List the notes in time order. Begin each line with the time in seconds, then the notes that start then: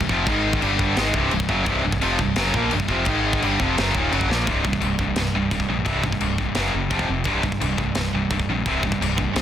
0.01 kick
0.09 F1 F2 C3 F3, kick
0.27 G#1 G#2 D#3 G#3, kick, crash
0.53 kick
0.61 G1 G2 D3 G3, crash
0.79 kick
0.96 G#1 G#2 D#3 G#3, snare, crash
1.14 C1 C2 G2 C3, kick
1.31 C1 C2 G2, crash
1.40 kick
1.48 F#1 F#2 C#3 F#3, kick
1.66 C1 C2 G2 C3, kick, crash
1.85 C1 C2 G2
1.92 kick
2.01 F1 F2 C3 F3, crash
2.19 C1 C2 G2, kick
2.36 F#1 F#2 C#3 F#3, snare, crash
2.54 A#1 A#2 F3 A#3, kick
2.71 C1 C2 G2, crash
2.80 kick
2.88 F1 F2 C3 F3, kick
3.05 G#1 G#2 D#3 G#3, kick, crash
3.33 kick
3.42 G1 G2 D3 G3, crash
3.60 F1 F2 C3 F3, kick
3.77 F#1 F#2 C#3 F#3, snare, crash
3.95 D#1 D#2 A#2 D#3, kick
4.12 F#1 F#2 C#3 F#3, crash
4.21 kick
4.29 A#1 A#2 F3 A#3, snare
4.46 C1 C2 G2 C3, kick, china
4.64 C2 G2, kick
4.73 kick
4.81 C1 C2 G2, china
4.99 C1 C2 G2, kick
5.16 C1 C2 G2, snare, china
5.34 C1 C2 G2
5.51 C1 C2 G2, kick, china
5.60 kick
5.68 A#1 C2 G2
5.85 C1 C2 G2 C3, kick, china
6.04 C2 G2, kick
6.12 kick
6.20 C1 C2 G2, china
6.38 C2 G2, kick
6.55 F#1 F#2 C#3 F#3, snare, china
6.73 F#1 F#2 C#3
6.90 F1 F2 C3 F3, kick, china
6.99 kick
7.09 F1 F2 C3
7.24 C1 C2 G2 C3, kick, china
7.43 C2 G2, kick
7.52 kick
7.61 C1 C2 G2, china
7.78 C1 C2 G2, kick
7.95 C1 C2 G2, snare, china
8.13 C1 C2 G2
8.30 C1 C2 G2, kick, china
8.40 kick
8.49 A#1 C2 G2
8.66 C1 C2 G2 C3, kick, china
8.83 C2 G2, kick
8.92 kick
9.01 C1 C2 G2, china
9.18 C2 G2, kick
9.36 C2 G2, snare, china